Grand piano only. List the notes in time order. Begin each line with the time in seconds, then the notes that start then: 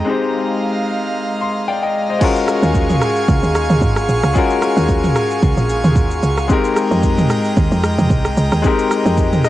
0.05 G#3 C4 D#4 G4
0.10 C5
1.41 C6
1.68 D5 F5 G5
1.83 D#5 G5
2.10 C5 D#5
2.19 G#3 C#4 F4 F#4
2.24 A#4
4.33 G#3 C#4 F4 F#4
4.38 A#4
6.48 G#3 C4 D#4 G4
6.53 A#4
8.62 G#3 C4 D#4 G4
8.67 A#4
9.45 D#5